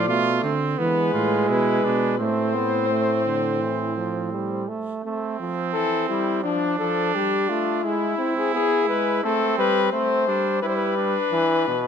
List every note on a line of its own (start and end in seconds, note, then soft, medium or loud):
0.00 0.48 D5 medium
0.07 0.43 B2 medium
0.07 0.53 A3 medium
0.07 0.42 F4 medium
0.43 0.78 D3 medium
0.43 0.80 C4 medium
0.78 1.13 E3 medium
0.78 2.16 G#3 medium
0.78 1.13 B3 medium
0.78 1.45 B4 medium
1.13 1.50 A2 medium
1.13 1.50 F4 medium
1.49 1.83 B2 medium
1.49 1.86 E4 medium
1.49 2.19 B4 medium
1.84 2.21 B2 medium
1.84 2.18 D4 medium
2.18 4.68 A2 medium
2.18 2.57 A3 medium
2.18 4.63 C4 medium
2.18 4.64 C5 medium
2.55 2.89 B3 medium
2.90 3.25 A3 medium
3.26 3.62 D3 medium
3.60 3.96 E3 medium
3.96 4.31 F3 medium
4.32 4.70 G3 medium
4.68 5.04 A3 medium
5.02 5.37 A3 medium
5.02 6.40 C4 medium
5.40 5.76 F3 medium
5.74 6.09 E3 medium
5.74 6.07 A4 medium
6.09 6.46 G3 medium
6.09 6.43 E4 medium
6.44 6.79 F3 medium
6.44 6.78 D4 medium
6.44 7.81 D4 medium
6.79 7.14 F3 medium
6.79 7.16 A4 medium
7.14 7.49 G3 medium
7.14 7.51 G4 medium
7.49 7.85 A3 medium
7.49 7.86 F4 medium
7.84 8.18 G#3 medium
7.84 9.25 E4 medium
7.84 8.37 E4 medium
8.19 8.55 C4 medium
8.37 8.54 G#4 medium
8.53 8.90 B3 medium
8.53 8.88 G#4 medium
8.89 9.23 G#3 medium
8.89 9.23 B4 medium
9.23 9.57 A3 medium
9.23 9.92 C4 medium
9.23 9.58 A4 medium
9.58 9.92 G3 medium
9.58 9.92 B4 medium
9.92 10.29 A3 medium
9.92 10.26 C4 medium
9.92 10.61 C5 medium
10.27 10.63 G3 medium
10.27 10.62 D4 medium
10.62 11.15 G3 medium
10.62 10.97 E4 medium
10.62 10.70 B4 medium
10.68 10.77 C5 medium
10.76 11.87 B4 medium
10.97 11.73 D4 medium
11.32 11.67 E3 medium
11.68 11.87 B2 medium